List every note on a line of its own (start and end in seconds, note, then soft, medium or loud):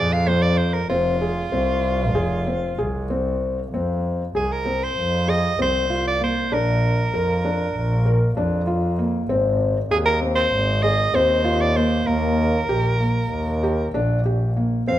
0.00 0.86 F2 loud
0.00 0.20 G#4 medium
0.00 0.14 D5 loud
0.13 0.29 F5 medium
0.27 0.75 C4 medium
0.27 0.44 C5 loud
0.42 0.59 D5 loud
0.57 0.75 C5 medium
0.73 0.89 A#4 medium
0.89 1.48 F1 loud
0.89 1.13 C4 medium
0.89 3.06 F4 medium
1.22 1.45 G#4 medium
1.52 2.16 C2 loud
1.52 2.00 C4 medium
2.14 2.44 F1 loud
2.14 2.39 G#4 medium
2.47 2.71 C4 medium
2.77 3.69 C2 loud
2.77 3.03 G#4 medium
3.10 3.58 C4 medium
3.72 4.31 F2 medium
3.72 4.21 C4 medium
4.34 4.93 C2 medium
4.34 4.59 G#4 medium
4.34 4.54 G#4 medium
4.52 4.85 A#4 medium
4.65 5.13 C4 medium
4.84 5.31 C5 loud
4.97 5.55 F2 loud
5.28 5.52 G#4 medium
5.28 5.60 D#5 loud
5.58 6.48 C2 medium
5.58 5.83 C4 medium
5.58 6.04 C5 loud
5.90 6.14 F4 medium
6.07 6.21 D5 loud
6.21 6.44 A#3 medium
6.21 6.55 C5 medium
6.52 7.09 A#1 loud
6.52 6.99 D4 medium
6.52 8.37 A#4 medium
7.13 7.71 F2 medium
7.13 7.37 A#4 medium
7.45 7.91 D4 medium
7.74 8.32 A#1 loud
8.06 8.29 A#4 medium
8.36 9.25 F2 loud
8.36 8.60 D4 medium
8.67 8.91 F4 medium
8.98 9.22 A#3 medium
9.29 9.87 G#1 loud
9.29 9.76 C4 medium
9.91 10.48 D#2 loud
9.91 10.14 G#4 medium
9.91 9.98 G#4 medium
10.06 10.20 A#4 loud
10.21 10.69 C4 medium
10.36 10.84 C5 loud
10.52 11.10 G#1 loud
10.83 11.07 G#4 medium
10.83 11.17 D#5 loud
11.14 12.03 D#2 loud
11.14 11.38 C4 medium
11.14 11.62 C5 loud
11.44 11.68 F4 medium
11.61 11.78 D5 loud
11.76 12.00 A#3 medium
11.76 12.09 C5 medium
12.07 12.65 D#2 loud
12.07 12.54 A#3 medium
12.07 13.94 A#4 loud
12.69 13.27 A#1 loud
12.69 12.93 G4 medium
13.00 13.48 A#3 medium
13.30 13.90 D#2 loud
13.63 13.87 G4 medium
13.94 14.84 A#1 loud
13.94 14.18 D4 medium
14.25 14.49 G4 medium
14.57 14.81 A#3 medium
14.88 14.99 F2 medium
14.88 14.99 C4 medium
14.88 14.99 F5 medium